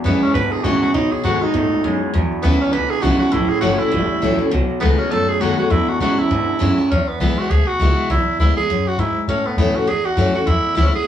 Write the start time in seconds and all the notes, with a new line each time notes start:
Already playing: E2
0.04 E2 F#2 C#3 E3 G#3 B3 E4
0.22 C#4, muted upright bass stroke
0.34 E2 G#2 B2 D3 B4
0.52 G#4, muted upright bass stroke
0.64 E2 A2 C#3 E3 G#3 B3 E4 F#4
0.82 B3 E4 F#4, muted upright bass stroke
0.94 B2 F#3 D#4
1.12 G#4, muted upright bass stroke
1.24 G#2 B2 D#3 G#3 A3 B3 F#4
1.41 B3 D#4 F#4, muted upright bass stroke
1.54 G#2 A2 B2 A3
1.72 muted upright bass stroke
1.84 F#2 B2 G#3
2.02 muted upright bass stroke
2.14 E2 B2
2.32 muted upright bass stroke
2.42 D#2 E2 C#3 E3 G#3 B3 E4
2.60 B3 C#4 E4
2.73 C#2 E2 B2 D3 B4
2.90 G#4, muted upright bass stroke
3.02 B1 E2 C#3 E3 G#3 B3 E4 F#4
3.19 B3 E4 F#4, muted upright bass stroke
3.32 A1 A2 E3 E4
3.49 G#4, muted upright bass stroke
3.61 G1 A2 E3 F#3 A3 C#4 E4 F#4
3.79 C#4 E4, muted upright bass stroke
3.92 G#1 E2 A2 G3
4.11 muted upright bass stroke
4.22 A1 A2 E3 F#3 A3 C#4 E4
4.38 C#4 E4, muted upright bass stroke
4.51 B1 B2 F#3
4.70 muted upright bass stroke
4.80 C#2 B2 D#3 G#3 A3 B3 F#4
4.98 B3 C#4 F#4, muted upright bass stroke
5.11 D#2 F#2 B2 A3 A4
5.29 G#4, muted upright bass stroke
5.40 F#2 B2 D#3 G#3 A3 B3 F#4
5.58 B3 F#4, muted upright bass stroke
5.70 E2 B2 E4
5.88 F#4, muted upright bass stroke
6.00 E2 B2 C#3 E3 G#3 B3 E4 F#4
6.19 B3 E4, muted upright bass stroke
6.31 E2 G#2 B2 D3
6.49 muted upright bass stroke
6.59 E2 F#2 C#3 E3 G#3 B3 E4
6.78 B3 E4, muted upright bass stroke
6.91 E2 C#4
7.08 B3, muted upright bass stroke
7.20 B1 E3 G#3 B3 E4
7.37 F#4, muted upright bass stroke
7.50 D2 B2 G#4
7.67 F#4, muted upright bass stroke
7.79 C#2 E3 G#3 B3 E4
8.10 B1 E2 E4
8.39 D2 E3 G#3 B3 E4
8.56 B3 E4 G#4, muted upright bass stroke
8.69 E2 F#2
8.86 F#4, muted upright bass stroke
8.98 G#2 E4
9.15 muted upright bass stroke
9.28 A2 C#4
9.44 B3, muted upright bass stroke
9.56 E2 E3 A3 B3 C#4 E4
9.74 C#4 E4 F#4, muted upright bass stroke
9.87 E2 G#2 G#4
10.05 F#4, muted upright bass stroke
10.17 F#2 E3 A3 C#4 E4
10.34 C#4 E4 F#4, muted upright bass stroke
10.47 E2 E4
10.65 muted upright bass stroke
10.75 D2 E3 G#3 B3 E4
10.81 C#4
10.87 E4
10.93 B3 E4 G#4, muted upright bass stroke